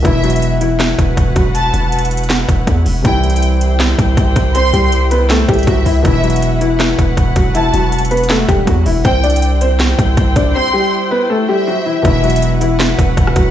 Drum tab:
HH |x-----------x---x---x---x-----------x-----------x-----------x-----------x-----------x-----------|x-----------x-----------x---x---x---x---x---x---x-----------x-----------x-----------o-----------|x-----------x---x---x---x-----------x-----------x-----------x-----------x-----------x-----------|x-----------x-----------x-----------x-----------x-----------x--x--x--x--x-----------o-----------|
CP |------------------------------------------------x-----------------------------------------------|------------------------------------------------x-----------------------------------------------|------------------------------------------------x-----------------------------------------------|------------------------------------------------x-----------------------------------------------|
SD |------------------------------------------------o-----------------------------------------------|------------------------------------------------o-----------------------------------------------|------------------------------------------------o-----------------------------------------------|------------------------------------------------o-----------------------------------------------|
BD |o-----------------------------------------------------------o-----------o-----------o-----------|------------------------------------------------------------o-----------o-----------------------|o-----------------------------------------------------------o-----------o-----------o-----------|------------------------------------------------------------o-----------o-----------------------|

HH |x-----------x---x---x---x-----------x-----------x-----------x-----------x-----------x-----------|x-----------x-----------x---x---x---x---x---x---x-----------x-----------x-----------o-----------|x-----------x---x---x---x-----------x-----------x-----------x-----------x-----------x-----------|------------------------------------------------------------------------------------------------|
CP |------------------------------------------------x-----------------------------------------------|------------------------------------------------x-----------------------------------------------|------------------------------------------------x-----------------------------------------------|------------------------------------------------------------------------------------------------|
SD |------------------------------------------------o-----------------------------------------------|------------------------------------------------o-----------------------------------------------|------------------------------------------------o-----------------------------------------------|------------------------------------------------------------------------------------------------|
BD |o-----------------------------------------------------------o-----------o-----------o-----------|------------------------------------------------------------o-----------o-----------------------|o-----------------------------------------------------------o-----------o-----------o-----------|------------------------------------------------------------------------------------------------|

HH |x-----------x---x---x---x-----------x-----------x-----------x-----------x-----------x-----------|
CP |------------------------------------------------x-----------------------------------------------|
SD |------------------------------------------------o-----------------------------r-----------------|
BD |o-----------------------------------------------------------o-----------o-----------o-----------|